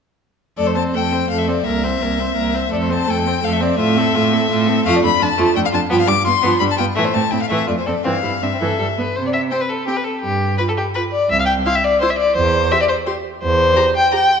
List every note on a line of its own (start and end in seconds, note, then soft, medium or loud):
0.57 0.90 F2 soft
0.57 0.79 A3 soft
0.57 0.77 A4 soft
0.57 0.68 D5 medium
0.67 0.75 C5 soft
0.75 0.96 C4 soft
0.75 0.97 C5 soft
0.75 0.82 A5 soft
0.94 1.26 F2 soft
0.94 1.13 A3 soft
0.94 1.15 A4 soft
0.94 1.29 G5 soft
1.12 1.30 C4 soft
1.12 1.30 C5 soft
1.30 1.61 F2 soft
1.30 1.50 A3 soft
1.30 1.50 A4 soft
1.30 1.40 F5 medium
1.38 1.49 E5 soft
1.48 1.65 C4 soft
1.48 1.66 C5 soft
1.48 1.65 D5 soft
1.64 1.97 C2 soft
1.64 1.85 A#3 soft
1.64 1.86 A#4 soft
1.64 2.72 E5 medium
1.84 2.03 C4 soft
1.84 2.04 C5 soft
2.01 2.33 C2 soft
2.01 2.21 A#3 soft
2.01 2.21 A#4 soft
2.19 2.37 C4 soft
2.19 2.36 C5 soft
2.36 2.68 C2 soft
2.36 2.56 A#3 soft
2.36 2.56 A#4 soft
2.54 2.71 C4 soft
2.54 2.71 C5 soft
2.72 3.04 F2 soft
2.72 2.92 A3 soft
2.72 2.92 A4 soft
2.72 2.76 D5 medium
2.82 2.93 C5 soft
2.90 3.09 C4 soft
2.90 3.10 C5 soft
2.90 3.12 A5 medium
3.07 3.40 F2 soft
3.07 3.28 A3 soft
3.07 3.29 A4 soft
3.07 3.45 G5 medium
3.27 3.43 C4 soft
3.27 3.43 C5 soft
3.44 3.75 F2 soft
3.44 3.63 A3 soft
3.44 3.63 A4 soft
3.44 3.54 F5 medium
3.53 3.64 E5 soft
3.61 3.79 C4 soft
3.61 3.78 C5 soft
3.61 3.79 D5 medium
3.79 4.10 A2 medium
3.79 3.98 A3 soft
3.79 3.99 F4 soft
3.79 4.83 E5 medium
3.97 4.18 C4 soft
3.97 4.17 A4 soft
4.15 4.46 A2 medium
4.15 4.35 A3 soft
4.15 4.35 F4 soft
4.33 4.50 C4 soft
4.33 4.50 A4 soft
4.50 4.81 A2 medium
4.50 4.70 A3 soft
4.50 4.69 F4 soft
4.68 4.85 C4 soft
4.68 4.85 A4 soft
4.86 4.93 F2 medium
4.86 5.02 F3 medium
4.86 5.02 A3 medium
4.86 4.98 F5 medium
4.96 5.03 D5 medium
5.02 5.10 F2 soft
5.02 5.11 A3 soft
5.02 5.09 D4 soft
5.02 5.24 B5 medium
5.19 5.28 F2 soft
5.19 5.29 D4 soft
5.19 5.26 F4 soft
5.19 5.55 A5 medium
5.37 5.46 F2 soft
5.37 5.54 F3 medium
5.37 5.54 A3 medium
5.55 5.63 F2 soft
5.55 5.63 A3 soft
5.55 5.62 D4 soft
5.55 5.59 G5 medium
5.65 5.69 F5 medium
5.72 5.81 F2 soft
5.72 5.81 D4 soft
5.72 5.79 F4 soft
5.72 5.81 A5 medium
5.89 5.99 G2 medium
5.89 6.07 F3 medium
5.89 6.06 B3 medium
5.89 6.00 G5 medium
6.00 6.09 F5 medium
6.07 6.16 G2 soft
6.07 6.15 G3 soft
6.07 6.14 D4 soft
6.07 6.26 D6 medium
6.25 6.33 G2 soft
6.25 6.34 B3 soft
6.25 6.32 F4 soft
6.25 6.59 C6 medium
6.42 6.50 G2 medium
6.42 6.60 F3 medium
6.42 6.59 B3 soft
6.60 6.69 G2 soft
6.60 6.68 G3 soft
6.60 6.68 D4 soft
6.60 6.64 B5 medium
6.71 6.77 A5 medium
6.78 6.87 G2 soft
6.78 6.87 B3 soft
6.78 6.86 F4 soft
6.78 6.85 G5 medium
6.95 7.04 A2 medium
6.95 7.14 E3 soft
6.95 7.13 A3 medium
6.95 7.06 E5 medium
7.04 7.15 C5 medium
7.14 7.23 A2 soft
7.14 7.22 A3 soft
7.14 7.22 C4 soft
7.14 7.32 A5 medium
7.31 7.40 A2 soft
7.31 7.40 C4 soft
7.31 7.39 E4 soft
7.31 7.41 G5 medium
7.42 7.49 F5 soft
7.50 7.58 A2 soft
7.50 7.68 E3 soft
7.50 7.66 A3 soft
7.50 7.67 E5 soft
7.67 7.77 F2 soft
7.67 7.76 A3 soft
7.67 7.75 F4 soft
7.67 7.72 D5 medium
7.78 7.88 C5 soft
7.86 7.95 F2 soft
7.86 7.95 C4 soft
7.86 7.94 A4 soft
7.86 8.05 D5 soft
8.04 8.13 G2 soft
8.04 8.23 E3 soft
8.04 8.22 C4 soft
8.04 8.44 F5 medium
8.23 8.32 G2 soft
8.23 8.31 G3 soft
8.23 8.31 E4 soft
8.42 8.50 G2 soft
8.42 8.50 C4 soft
8.42 8.46 D4 soft
8.42 8.98 E5 soft
8.53 8.61 C4 soft
8.61 8.69 G2 soft
8.61 8.78 E3 soft
8.61 8.78 A4 soft
8.79 8.87 G2 soft
8.79 8.87 G3 soft
8.79 8.86 A4 medium
8.98 9.05 G2 soft
8.98 9.05 B3 soft
8.98 9.17 B4 soft
9.16 9.47 C3 soft
9.16 9.25 C5 medium
9.27 9.30 D5 soft
9.34 9.41 E5 medium
9.51 9.60 C4 soft
9.51 9.63 C5 soft
9.51 9.59 G5 soft
9.61 9.71 B4 soft
9.70 9.87 A4 soft
9.87 9.95 C4 soft
9.87 9.98 G4 soft
9.87 9.96 G5 soft
9.97 10.06 B4 soft
10.04 10.21 A4 soft
10.21 10.54 G2 soft
10.21 10.57 G4 medium
10.58 10.67 F4 soft
10.58 10.62 B4 medium
10.58 10.66 B5 soft
10.69 10.72 A4 soft
10.77 10.84 G4 soft
10.94 11.04 F4 soft
10.94 11.02 B4 medium
10.94 11.02 B5 soft
11.12 11.30 D5 medium
11.30 11.59 C2 soft
11.30 11.39 E5 medium
11.40 11.44 F5 medium
11.46 11.53 G5 medium
11.66 11.74 E4 soft
11.66 11.77 F5 medium
11.66 11.74 C6 soft
11.76 11.86 E5 medium
11.85 12.01 D5 medium
12.01 12.10 E4 soft
12.01 12.12 C5 medium
12.01 12.10 C6 soft
12.10 12.18 E5 medium
12.18 12.35 D5 medium
12.36 12.66 E2 medium
12.36 12.73 C5 medium
12.71 12.80 G4 soft
12.71 12.80 E5 medium
12.71 12.79 C6 soft
12.82 12.85 D5 medium
12.88 12.96 C5 medium
13.06 13.14 G4 soft
13.06 13.15 C6 soft
13.42 13.72 E2 medium
13.42 13.91 C5 medium
13.76 13.84 G4 soft
13.76 13.84 A#5 medium
13.97 14.13 G5 medium
14.11 14.21 G4 soft
14.11 14.40 G5 medium
14.11 14.19 A#5 soft